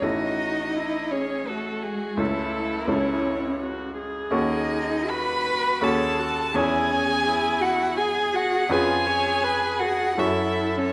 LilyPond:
<<
  \new Staff \with { instrumentName = "Violin" } { \time 3/4 \key cis \minor \tempo 4 = 83 dis''4. cis''8 a'8 gis'8 | a'4 cis''4 r4 | dis''4 b''4 a''4 | gis''4. fis''8 gis''8 fis''8 |
gis''4. fis''8 e''8. cis''16 | }
  \new Staff \with { instrumentName = "Viola" } { \time 3/4 \key cis \minor fis'4 e'8 gis'8 fis'4 | e'2 fis'8 gis'8~ | gis'4 fis'4 gis'8 fis'8 | e'8 cis'8 e'4 gis'4 |
eis'8 cis''8 b'8 gis'8 a'4 | }
  \new Staff \with { instrumentName = "Cello" } { \time 3/4 \key cis \minor dis'4. cis'8 a8 gis8 | a4 cis'4 r4 | dis'4 b'4 a'4 | gis'4. fis'8 gis'8 fis'8 |
gis'4. fis'8 e'8. cis'16 | }
  \new Staff \with { instrumentName = "Grand piano" } { \time 3/4 \key cis \minor <a,, cis' e' a'>2. | <cis, cis' e' a'>4 <cis, cis' e' a'>2 | <dis, cis' fis' a'>2 <dis, cis' fis' a'>4 | <e, cis' gis' cis''>2. |
<eis, cis' gis' b'>2 <fis, cis' fis' a'>4 | }
>>